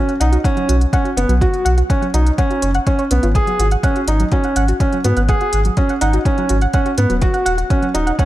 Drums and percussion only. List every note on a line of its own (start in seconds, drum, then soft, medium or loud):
0.09 closed hi-hat soft
0.21 closed hi-hat medium
0.33 closed hi-hat soft
0.44 kick loud
0.44 closed hi-hat soft
0.57 closed hi-hat soft
0.69 closed hi-hat medium
0.81 closed hi-hat soft
0.93 kick loud
0.93 closed hi-hat soft
1.05 closed hi-hat soft
1.17 closed hi-hat medium
1.29 closed hi-hat soft
1.41 kick loud
1.41 closed hi-hat soft
1.54 closed hi-hat soft
1.66 closed hi-hat medium
1.78 closed hi-hat soft
1.90 kick loud
1.90 closed hi-hat soft
2.02 closed hi-hat soft
2.14 closed hi-hat medium
2.26 closed hi-hat soft
2.38 kick medium
2.38 closed hi-hat soft
2.51 closed hi-hat soft
2.62 closed hi-hat medium
2.74 closed hi-hat soft
2.87 kick medium
2.87 closed hi-hat soft
2.99 closed hi-hat soft
3.11 closed hi-hat medium
3.23 closed hi-hat soft
3.35 kick medium
3.35 closed hi-hat soft
3.47 closed hi-hat soft
3.60 closed hi-hat medium
3.71 closed hi-hat soft
3.83 kick medium
3.83 closed hi-hat soft
3.96 closed hi-hat soft
4.08 closed hi-hat medium
4.20 closed hi-hat soft
4.32 kick medium
4.32 closed hi-hat soft
4.44 closed hi-hat soft
4.56 closed hi-hat medium
4.68 closed hi-hat soft
4.80 kick medium
4.80 closed hi-hat soft
4.92 closed hi-hat soft
5.04 closed hi-hat medium
5.17 closed hi-hat soft
5.29 kick medium
5.29 closed hi-hat soft
5.41 closed hi-hat soft
5.53 closed hi-hat medium
5.65 closed hi-hat soft
5.77 kick medium
5.77 closed hi-hat soft
5.89 closed hi-hat soft
6.01 closed hi-hat medium
6.13 closed hi-hat soft
6.25 kick medium
6.25 closed hi-hat soft
6.38 closed hi-hat soft
6.49 closed hi-hat medium
6.61 closed hi-hat soft
6.73 kick medium
6.73 closed hi-hat soft
6.86 closed hi-hat soft
6.98 closed hi-hat medium
7.10 closed hi-hat soft
7.22 kick medium
7.22 closed hi-hat soft
7.34 closed hi-hat soft
7.46 closed hi-hat medium
7.58 closed hi-hat soft
7.70 kick medium
7.70 closed hi-hat soft
7.82 closed hi-hat soft
7.95 closed hi-hat medium
8.07 closed hi-hat soft
8.19 kick medium
8.19 closed hi-hat soft